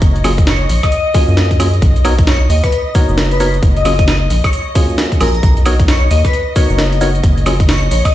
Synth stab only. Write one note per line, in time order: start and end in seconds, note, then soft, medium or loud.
0.24 0.33 F#3 loud
0.24 0.33 A#3 medium
0.24 0.33 C#4 medium
0.24 0.33 F4 medium
0.24 0.33 G#4 loud
1.14 1.58 F#3 medium
1.14 1.58 A#3 medium
1.14 1.58 C#4 medium
1.14 1.58 F4 medium
1.14 1.58 G#4 medium
1.60 1.69 F#3 loud
1.60 1.69 A#3 medium
1.60 1.69 C#4 medium
1.60 1.69 F4 medium
1.60 1.69 G#4 loud
2.05 2.14 B3 medium
2.05 2.14 D#4 medium
2.05 2.14 F#4 medium
2.05 2.14 A#4 medium
2.05 2.14 C#5 loud
2.95 3.38 B3 medium
2.95 3.38 D#4 medium
2.95 3.38 F#4 medium
2.95 3.38 A#4 medium
2.95 3.38 C#5 medium
3.40 3.49 B3 loud
3.40 3.49 D#4 medium
3.40 3.49 F#4 medium
3.40 3.49 A#4 medium
3.40 3.49 C#5 loud
3.85 3.94 F#3 medium
3.85 3.94 A#3 medium
3.85 3.94 C#4 medium
3.85 3.94 F4 medium
3.85 3.94 G#4 loud
4.75 5.19 F#3 medium
4.75 5.19 A#3 medium
4.75 5.19 C#4 medium
4.75 5.19 F4 medium
4.75 5.19 G#4 loud
5.21 5.30 F#3 loud
5.21 5.30 A#3 medium
5.21 5.30 C#4 medium
5.21 5.30 F4 medium
5.21 5.30 G#4 loud
5.66 5.75 B3 medium
5.66 5.75 D#4 medium
5.66 5.75 F#4 medium
5.66 5.75 A#4 medium
5.66 5.75 C#5 loud
6.56 6.99 B3 medium
6.56 6.99 D#4 medium
6.56 6.99 F#4 medium
6.56 6.99 A#4 medium
6.56 6.99 C#5 medium
7.01 7.10 B3 medium
7.01 7.10 D#4 medium
7.01 7.10 F#4 medium
7.01 7.10 A#4 medium
7.01 7.10 C#5 loud
7.46 7.55 F#3 medium
7.46 7.55 A#3 medium
7.46 7.55 C#4 medium
7.46 7.55 F4 medium
7.46 7.55 G#4 loud